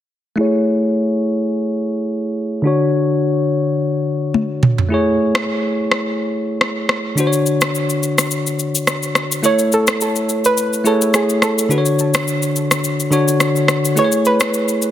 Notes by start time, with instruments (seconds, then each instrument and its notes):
0.36 tine electric piano A3 E4 G#4
0.41 tine electric piano C#5
2.62 tine electric piano D3 D4 F#4
2.67 tine electric piano C#5
4.34 high tom
4.63 mid tom
4.78 floor tom
4.89 tine electric piano A3 E4 G#4
4.94 tine electric piano C#5
5.35 cross-stick
5.92 cross-stick
6.61 cross-stick
6.89 cross-stick
7.15 tine electric piano D3 D4 F#4, shaker
7.20 tine electric piano C5
7.27 tine electric piano C#5
7.33 shaker
7.46 shaker
7.61 cross-stick, shaker
7.75 shaker
7.90 shaker
8.03 shaker
8.18 cross-stick, shaker
8.31 shaker
8.47 shaker
8.59 shaker
8.75 shaker
8.87 cross-stick, shaker
9.03 shaker
9.15 cross-stick, shaker
9.32 shaker
9.43 tine electric piano A3 E4 A4 C#5, synth pluck C#5, shaker
9.59 shaker
9.72 synth pluck A4, shaker
9.87 cross-stick, shaker
10.01 synth pluck A4, shaker
10.16 shaker
10.29 shaker
10.45 synth pluck B4, shaker
10.57 shaker
10.73 shaker
10.84 tine electric piano A3 E4 G#4 C#5, synth pluck A4, shaker
11.01 shaker
11.14 synth pluck G#4, cross-stick, shaker
11.29 shaker
11.42 synth pluck A4, cross-stick, shaker
11.59 shaker
11.69 tine electric piano D3 D4 F#4 B4, shaker
11.78 tine electric piano C#5
11.86 shaker
11.99 shaker
12.14 cross-stick, shaker
12.27 shaker
12.42 shaker
12.56 shaker
12.71 cross-stick, shaker
12.84 shaker
13.00 shaker
13.11 tine electric piano D3 D4 F#4 C#5, shaker
13.28 shaker
13.40 cross-stick, shaker
13.56 shaker
13.68 cross-stick, shaker
13.85 shaker
13.96 tine electric piano A3 E4 G#4 B4, synth pluck C#5, shaker
14.05 tine electric piano C#5
14.12 shaker
14.25 synth pluck B4, shaker
14.40 cross-stick, shaker
14.54 shaker
14.68 shaker
14.82 shaker